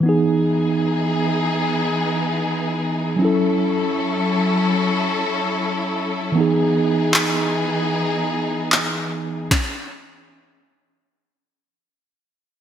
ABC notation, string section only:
X:1
M:4/4
L:1/8
Q:"Swing 16ths" 1/4=76
K:E
V:1 name="String section"
[E,B,DG]8 | [F,CEA]8 | [E,B,DG]8 | z8 |]